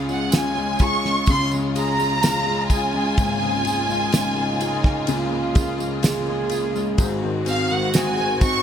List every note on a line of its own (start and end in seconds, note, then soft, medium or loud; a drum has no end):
0.00 1.28 C#2 medium
0.00 1.26 C#3 medium
0.00 1.28 C#3 medium
0.00 6.95 C#3 medium
0.00 0.09 G#3 medium
0.00 3.15 G#3 medium
0.00 1.02 C#4 medium
0.00 3.82 C#4 medium
0.00 6.96 F4 medium
0.00 0.55 G#4 medium
0.00 0.79 G#4 medium
0.08 0.56 G#3 medium
0.08 0.78 F4 medium
0.08 0.32 F#5 medium
0.08 tambourine soft
0.32 2.22 G#3 medium
0.32 2.19 F4 medium
0.32 0.81 G#5 medium
0.32 snare loud
0.32 ride medium
0.32 tambourine loud
0.55 1.03 G#3 medium
0.55 1.27 G#4 medium
0.79 1.97 F4 medium
0.79 1.74 G#4 medium
0.79 1.29 C#6 loud
0.79 kick medium
0.79 ride medium
0.79 tambourine soft
1.03 1.52 G#3 soft
1.03 1.50 C#4 medium
1.03 snare soft
1.26 5.06 C#2 medium
1.26 3.16 C#3 medium
1.26 5.06 C#3 medium
1.26 1.75 G#4 medium
1.26 kick medium
1.26 ride medium
1.26 tambourine soft
1.31 1.51 C6 loud
1.51 1.97 G#3 medium
1.51 2.92 C#4 soft
1.51 tambourine soft
1.75 2.46 G#4 medium
1.75 2.69 G#4 medium
1.75 2.68 A#5 loud
1.75 ride medium
1.75 tambourine soft
1.99 2.44 G#3 soft
1.99 2.70 F4 medium
1.99 tambourine soft
2.23 4.11 G#3 medium
2.23 4.10 F4 medium
2.23 snare loud
2.23 ride medium
2.23 tambourine medium
2.45 2.92 G#3 soft
2.45 3.17 G#4 medium
2.70 3.88 F4 medium
2.70 3.65 G#4 medium
2.70 5.53 G#5 medium
2.70 kick medium
2.70 ride medium
2.70 tambourine soft
2.94 3.41 G#3 medium
2.94 3.40 C#4 medium
3.17 6.95 G#1 medium
3.17 6.95 G#2 medium
3.17 5.07 C#3 medium
3.17 6.96 A#3 medium
3.17 3.64 G#4 medium
3.17 kick loud
3.17 ride medium
3.17 tambourine soft
3.42 3.88 G#3 medium
3.42 4.83 C#4 medium
3.65 4.36 G#4 medium
3.65 4.60 G#4 medium
3.65 ride medium
3.65 tambourine soft
3.89 4.35 G#3 medium
3.89 4.59 F4 medium
3.89 tambourine soft
4.12 6.02 G#3 medium
4.12 5.05 D#4 loud
4.12 5.99 F4 medium
4.12 snare loud
4.12 ride medium
4.12 tambourine loud
4.36 4.84 G#3 medium
4.36 5.08 G#4 medium
4.60 5.77 F4 medium
4.60 5.53 G#4 medium
4.60 ride medium
4.60 tambourine soft
4.84 5.30 G#3 soft
4.84 5.30 C#4 medium
4.84 kick medium
4.84 snare soft
5.07 6.95 C#2 medium
5.07 7.08 C#3 medium
5.07 6.95 C#3 medium
5.07 6.04 F4 loud
5.07 5.54 G#4 medium
5.07 ride medium
5.07 tambourine soft
5.31 5.77 G#3 medium
5.31 6.73 C#4 medium
5.54 6.27 G#4 medium
5.54 6.50 G#4 medium
5.54 kick loud
5.54 ride medium
5.54 tambourine soft
5.78 6.27 G#3 soft
5.78 6.49 F4 medium
5.78 tambourine soft
6.02 7.92 G#3 medium
6.02 6.96 F4 medium
6.02 6.95 G#4 loud
6.02 snare loud
6.02 ride medium
6.02 tambourine medium
6.27 6.74 G#3 soft
6.27 6.98 G#4 medium
6.49 7.08 F4 medium
6.49 6.98 G#4 medium
6.49 ride medium
6.49 tambourine soft
6.74 6.99 G#3 medium
6.74 7.08 C#4 medium
6.74 tambourine soft
6.98 8.62 G#1 medium
6.98 8.62 G#2 medium
6.98 8.62 D#3 medium
6.98 8.62 C4 medium
6.98 8.62 F#4 loud
6.98 7.45 G#4 medium
6.98 kick loud
6.98 ride medium
6.98 tambourine medium
7.20 7.69 D#3 medium
7.20 8.62 C4 medium
7.45 8.41 C4 medium
7.45 8.16 G#4 medium
7.45 ride soft
7.45 tambourine soft
7.49 7.70 F5 medium
7.69 8.17 D#3 medium
7.69 8.40 D#4 medium
7.69 7.95 F#5 medium
7.93 8.62 G#3 medium
7.93 snare loud
7.93 ride medium
7.93 tambourine medium
7.98 8.41 G#5 medium
8.16 8.62 D#3 medium
8.16 8.62 G#4 medium
8.41 8.62 C4 medium
8.41 8.62 D#4 medium
8.41 8.62 C#6 loud
8.41 kick medium
8.41 ride medium
8.41 tambourine soft